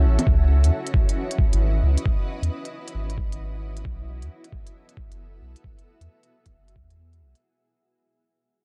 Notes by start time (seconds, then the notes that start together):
Already playing: C#4 E4 F#4 A4 E5
0.05 A1
0.19 closed hi-hat, low bongo
0.26 C#2 E4 B4 D#5, kick
0.64 E2, closed hi-hat
0.87 closed hi-hat
0.94 kick
1.09 closed hi-hat
1.31 closed hi-hat
1.39 kick
1.53 G#1, closed hi-hat
1.83 C#2
1.98 closed hi-hat
2.06 kick
2.42 E2, closed hi-hat
2.65 closed hi-hat
2.88 closed hi-hat
2.95 G#1
3.10 closed hi-hat
3.18 kick
3.32 closed hi-hat
3.77 closed hi-hat
3.84 B1 B3 F#4 A4 E5, kick
4.22 E2, closed hi-hat
4.44 closed hi-hat
4.52 kick
4.67 closed hi-hat
4.89 closed hi-hat
4.97 kick
5.11 F#1, closed hi-hat
5.41 B1
5.56 closed hi-hat
5.64 G#4, kick
5.79 closed hi-hat
6.01 E2, closed hi-hat
6.23 closed hi-hat
6.46 kick, closed hi-hat
6.54 F#1
6.68 closed hi-hat
6.76 E2, kick
6.91 closed hi-hat
7.13 closed hi-hat
7.21 B1
7.35 closed hi-hat